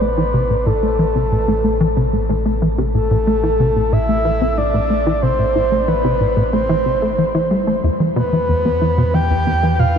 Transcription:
0.00 7.80 A1 medium
0.00 0.11 A3 medium
0.00 0.68 B4 loud
0.18 0.24 E3 loud
0.34 0.44 C3 loud
0.50 0.56 A2 medium
0.66 0.72 A2 loud
0.66 2.29 A4 loud
0.83 0.93 A3 medium
0.99 1.05 E3 loud
1.15 1.25 C3 medium
1.32 1.38 A2 medium
1.48 1.54 A2 loud
1.64 1.74 A3 medium
1.80 1.87 E3 loud
1.97 2.07 C3 loud
2.13 2.19 A2 medium
2.29 2.36 A2 loud
2.46 2.56 A3 medium
2.62 2.68 E3 medium
2.78 2.88 C3 loud
2.95 3.01 A2 medium
2.95 3.94 A4 loud
3.11 3.17 A2 loud
3.27 3.37 A3 medium
3.43 3.50 E3 loud
3.60 3.70 C3 loud
3.76 3.82 A2 medium
3.92 3.99 A2 loud
3.92 4.59 E5 loud
4.09 4.19 A3 medium
4.25 4.31 E3 loud
4.41 4.52 C3 loud
4.58 4.64 A2 medium
4.58 5.22 D5 loud
4.74 4.80 A2 loud
4.90 5.00 A3 medium
5.07 5.13 E3 loud
5.23 5.33 C3 loud
5.23 5.89 C5 loud
5.39 5.45 A2 medium
5.55 5.62 A2 loud
5.72 5.82 A3 medium
5.88 5.94 E3 loud
5.88 6.55 B4 loud
6.04 6.15 C3 loud
6.21 6.27 A2 medium
6.37 6.43 A2 loud
6.53 6.63 A3 medium
6.53 7.51 C5 loud
6.69 6.76 E3 loud
6.86 6.96 C3 medium
7.02 7.17 A3 medium
7.18 7.25 E3 medium
7.35 7.50 E3 loud
7.51 7.66 G3 medium
7.67 7.78 A3 medium
7.84 7.90 E2 loud
7.84 9.98 E2 medium
8.00 8.10 E3 medium
8.16 8.22 B2 loud
8.16 9.15 B4 loud
8.33 8.39 E3 medium
8.49 8.55 E2 medium
8.65 8.71 E2 loud
8.81 8.92 E3 medium
8.98 9.04 B2 loud
9.14 9.20 E3 medium
9.14 9.81 G5 loud
9.30 9.37 E2 medium
9.47 9.53 E2 loud
9.63 9.73 E3 medium
9.79 9.85 B2 medium
9.79 9.98 F5 loud

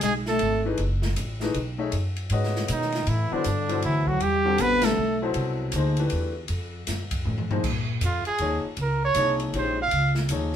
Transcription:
0.01 0.40 B1 medium
0.01 0.14 G#3 medium
0.01 0.14 G#4 loud
0.01 hi-hat pedal medium
0.01 ride medium
0.26 0.63 A3 medium
0.26 0.63 A4 medium
0.26 snare soft
0.39 0.78 G#1 medium
0.39 ride medium
0.65 0.77 E3 medium
0.65 0.77 A3 medium
0.65 0.78 D#4 medium
0.65 0.78 G#4 medium
0.65 0.78 B4 medium
0.78 1.16 F#1 medium
0.78 ride medium
1.02 snare medium
1.16 1.54 A1 medium
1.16 hi-hat pedal soft
1.16 ride medium
1.40 1.54 E3 medium
1.40 1.54 A3 medium
1.40 1.54 D#4 medium
1.40 1.54 G#4 medium
1.40 1.54 B4 medium
1.40 snare soft
1.54 1.92 B1 medium
1.54 ride medium
1.78 1.91 A3 medium
1.78 1.91 D#4 medium
1.78 1.92 G#4 medium
1.78 1.91 C#5 medium
1.78 1.92 E5 medium
1.92 2.29 F#2 medium
1.92 ride medium
2.16 ride soft
2.30 2.67 G#2 medium
2.30 2.89 G#3 medium
2.30 2.89 C#4 medium
2.30 2.89 F#4 medium
2.30 2.89 B4 medium
2.30 2.89 D#5 medium
2.30 ride medium
2.44 snare soft
2.56 snare soft
2.68 3.06 B2 medium
2.68 3.10 D#3 medium
2.68 3.10 D#4 medium
2.68 hi-hat pedal medium
2.68 ride medium
2.82 snare soft
2.92 snare soft
2.92 ride soft
3.07 3.29 A2 medium
3.07 3.35 E3 medium
3.07 3.34 E4 medium
3.07 ride medium
3.31 3.83 D3 medium
3.31 3.44 F#3 medium
3.31 3.44 B3 medium
3.31 3.84 D4 medium
3.31 3.44 E4 medium
3.31 3.44 A4 medium
3.31 3.45 C5 medium
3.31 muted upright bass stroke soft
3.44 3.82 G2 medium
3.44 hi-hat pedal medium
3.44 ride medium
3.68 4.18 B2 medium
3.68 4.18 F#3 medium
3.68 4.18 E4 medium
3.68 4.19 A4 medium
3.68 4.19 C5 medium
3.68 ride soft
3.82 4.20 D2 medium
3.82 4.10 E3 medium
3.82 4.09 E4 medium
3.82 ride medium
4.07 4.23 F#3 medium
4.07 4.24 F#4 medium
4.07 kick soft
4.20 4.57 E2 medium
4.20 4.61 G3 medium
4.20 4.63 G4 loud
4.20 ride medium
4.45 4.94 D3 medium
4.45 4.94 G3 medium
4.45 4.95 C4 medium
4.45 4.95 F#4 medium
4.45 4.95 A4 medium
4.58 4.96 A1 medium
4.58 4.86 B3 medium
4.58 4.86 B4 loud
4.58 hi-hat pedal medium
4.58 ride medium
4.82 5.22 A3 medium
4.82 5.22 A4 medium
4.82 snare medium
4.82 ride medium
4.97 5.34 B1 medium
5.22 5.71 B2 medium
5.22 5.71 F#3 medium
5.22 5.71 E4 medium
5.22 5.72 A4 medium
5.22 5.71 C5 medium
5.34 5.72 C2 medium
5.34 ride medium
5.72 6.10 D2 medium
5.72 5.96 F3 medium
5.72 5.96 A#3 medium
5.72 5.96 D#4 medium
5.72 hi-hat pedal medium
5.72 ride medium
5.76 5.96 G#4 medium
5.76 5.96 C5 medium
5.97 6.31 E3 medium
5.97 6.32 A3 medium
5.97 6.32 D4 medium
5.97 6.32 G4 medium
5.97 6.32 B4 medium
5.97 ride soft
6.10 6.49 E2 medium
6.10 ride medium
6.48 6.86 F2 medium
6.48 ride medium
6.87 7.25 F#2 medium
6.87 snare soft
6.87 hi-hat pedal medium
6.87 ride medium
7.11 kick medium
7.11 ride medium
7.25 7.63 A2 medium
7.25 floor tom soft
7.38 floor tom medium
7.50 7.63 F3 medium
7.50 7.63 A#3 medium
7.50 7.63 D#4 medium
7.50 7.63 G#4 medium
7.50 7.63 C5 medium
7.50 floor tom medium
7.63 8.00 A#2 medium
7.63 kick medium
7.63 crash medium
8.01 8.24 F2 medium
8.01 hi-hat pedal medium
8.01 ride medium
8.05 8.26 F4 medium
8.25 8.62 G#4 medium
8.25 muted upright bass stroke soft
8.25 ride soft
8.38 8.62 D#2 medium
8.38 8.62 F3 medium
8.38 8.62 A#3 medium
8.38 8.62 D#4 medium
8.38 8.62 G#4 medium
8.38 8.62 C#5 medium
8.38 ride medium
8.64 muted upright bass stroke soft
8.77 9.14 C#2 medium
8.77 ride medium
8.82 9.02 A#4 medium
9.05 9.39 C#5 loud
9.14 9.52 C2 medium
9.14 9.52 F3 medium
9.14 9.53 A#3 medium
9.14 9.53 D#4 medium
9.14 9.53 G#4 medium
9.14 9.53 C#5 medium
9.14 hi-hat pedal medium
9.14 ride medium
9.40 ride soft
9.53 9.91 A#1 medium
9.53 9.76 D#3 medium
9.53 9.76 G#3 medium
9.53 9.76 C#4 medium
9.53 9.76 G4 medium
9.53 9.76 C5 medium
9.53 ride medium
9.58 9.79 C5 medium
9.82 10.16 F5 loud
9.91 10.29 C#2 medium
9.91 ride medium
10.15 snare soft
10.29 10.56 D#2 medium
10.29 10.56 F3 medium
10.29 10.56 A#3 medium
10.29 10.56 D#4 medium
10.29 10.56 G#4 medium
10.29 10.56 C#5 medium
10.29 hi-hat pedal medium
10.29 ride medium

